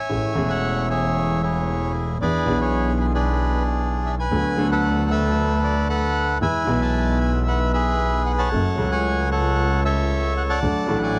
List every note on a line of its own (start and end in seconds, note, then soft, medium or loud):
0.00 0.48 C#5 medium
0.00 0.89 E5 medium
0.00 0.51 G#5 medium
0.09 0.32 A1 soft
0.09 0.32 A1 medium
0.09 0.32 A2 medium
0.09 0.32 E3 soft
0.09 0.32 A3 soft
0.09 0.32 C#4 soft
0.09 0.32 G#4 soft
0.34 2.12 E1 medium
0.34 2.12 E2 medium
0.34 2.11 E3 medium
0.34 2.12 A3 medium
0.34 2.12 C#4 medium
0.34 2.13 G#4 medium
0.50 0.88 C#5 medium
0.50 0.87 F#5 medium
0.90 1.42 G#4 medium
0.90 1.42 C#5 medium
0.90 1.45 E5 medium
1.43 2.18 E4 medium
1.43 2.18 G#4 medium
1.43 1.92 C#5 medium
2.21 2.43 E2 soft
2.21 2.44 E2 medium
2.21 2.43 E3 medium
2.21 2.43 B3 soft
2.21 2.44 D4 soft
2.21 2.61 G#4 medium
2.21 2.44 G#4 soft
2.21 2.99 B4 medium
2.21 2.58 D5 loud
2.45 4.22 B1 medium
2.45 4.22 B2 medium
2.45 4.21 E3 medium
2.45 4.22 B3 medium
2.45 4.22 D4 medium
2.45 4.23 G#4 medium
2.61 3.13 G#4 medium
2.61 2.98 C#5 medium
3.01 3.06 B4 medium
3.14 4.15 D4 medium
3.14 4.15 G#4 medium
3.14 3.63 B4 medium
4.06 4.12 E5 medium
4.19 4.71 B4 medium
4.19 4.68 G#5 medium
4.31 4.53 D2 medium
4.31 4.54 D2 medium
4.31 4.54 D3 medium
4.31 4.54 F#3 soft
4.31 4.54 B3 soft
4.31 4.54 D4 soft
4.31 4.54 A4 soft
4.56 6.32 D2 medium
4.56 6.32 D2 loud
4.56 6.32 D3 medium
4.56 6.31 F#3 medium
4.56 6.32 B3 medium
4.56 6.33 D4 medium
4.56 6.33 A4 medium
4.71 5.10 A4 medium
4.71 5.10 B4 medium
4.71 5.12 F#5 medium
5.11 5.88 A4 medium
5.11 5.88 B4 medium
5.11 5.59 E5 medium
5.64 5.88 D5 medium
5.89 6.38 A4 medium
5.89 6.38 B4 medium
5.89 6.38 F#5 medium
6.41 6.64 E2 medium
6.41 6.63 E3 medium
6.41 6.64 G#3 soft
6.41 6.64 B3 soft
6.41 6.64 G#4 soft
6.41 7.43 B4 medium
6.41 6.81 E5 loud
6.41 7.19 G#5 medium
6.65 8.43 B1 medium
6.65 8.43 B2 medium
6.65 8.42 E3 medium
6.65 8.43 G#3 medium
6.65 8.43 B3 medium
6.69 8.44 B4 medium
6.82 7.72 E5 medium
6.82 7.18 A5 medium
7.21 7.33 G#5 medium
7.48 7.72 B4 medium
7.48 7.59 F#5 medium
7.73 8.49 G#4 medium
7.73 8.49 B4 medium
7.73 8.22 E5 medium
8.26 8.32 F#5 medium
8.38 8.91 C#5 medium
8.38 9.30 F#5 medium
8.38 8.88 A5 medium
8.51 8.74 F#1 medium
8.51 8.74 F#2 soft
8.51 8.74 F#3 medium
8.51 8.74 A3 soft
8.51 8.74 C#4 soft
8.51 8.74 A4 medium
8.75 10.53 C#2 medium
8.75 10.54 C#2 medium
8.75 10.53 C#3 medium
8.75 10.52 F#3 medium
8.75 10.53 A3 medium
8.75 10.54 C#4 medium
8.80 10.55 A4 medium
8.92 9.30 C#5 medium
8.92 9.29 G#5 medium
9.31 9.83 A4 medium
9.31 9.84 C#5 medium
9.31 9.81 F#5 medium
9.85 10.59 A4 medium
9.85 10.60 C#5 medium
9.85 10.34 E5 medium
10.37 10.43 F#5 medium
10.50 11.01 D5 medium
10.50 11.19 F#5 medium
10.50 10.99 A5 medium
10.62 10.85 D2 medium
10.62 10.85 D3 medium
10.62 10.85 F#3 soft
10.62 10.85 A3 soft
10.62 10.85 D4 soft
10.62 10.85 A4 soft
10.86 11.19 A1 medium
10.86 11.19 A2 medium
10.86 11.19 F#3 medium
10.86 11.19 A3 medium
10.86 11.19 D4 medium
10.86 11.19 A4 medium
11.03 11.19 D5 medium
11.03 11.19 G#5 medium